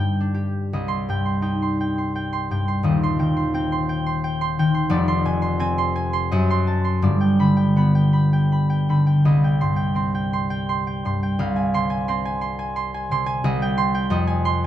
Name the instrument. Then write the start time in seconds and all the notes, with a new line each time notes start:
harp
Already playing: G2 G3 G4 G5
0.20 D4
0.34 G4
0.73 C2 D#5
0.88 C6
1.09 G2 G5
1.25 C6
1.42 D#4 G5
1.62 C6
1.81 G5
1.98 C6
2.16 G5
2.33 C6
2.51 G2 G5
2.68 C6
2.83 D#1 D#2 D#5
3.03 C6
3.19 D#3 G5
3.37 C6
3.54 C4 G5
3.72 C6
3.89 G5
4.06 C6
4.24 G5
4.41 C6
4.59 D#3 G5
4.74 C6
4.89 F1 F2 D5
5.08 C6
5.25 C3 G#5
5.42 C6
5.59 C4 G#5
5.78 C6
5.96 G#5
6.13 C6
6.31 F#2 D#5
6.50 C6
6.67 A5
6.84 C6
7.02 G1 G2 D5
7.21 G5
7.39 D3 B5
7.57 G5
7.76 B3 B5
7.95 G5
8.13 B5
8.33 G5
8.52 B5
8.70 G5
8.89 D3 B5
9.07 G5
9.25 C2 D#5
9.44 G5
9.61 G2 C6
9.76 G5
9.95 C4 C6
10.15 G5
10.33 C6
10.50 G5
10.69 C6
10.87 G5
11.05 G2 C6
11.23 G5
11.39 C2 F5
11.56 G#5
11.74 C3 C6
11.90 G#5
12.08 C4 C6
12.25 G#5
12.41 C6
12.59 G#5
12.76 C6
12.94 G#5
13.11 C3 C6
13.26 G#5
13.44 C2 D#5
13.62 G5
13.78 C6
13.95 G5
14.10 F2 D#5
14.27 G#5
14.45 C6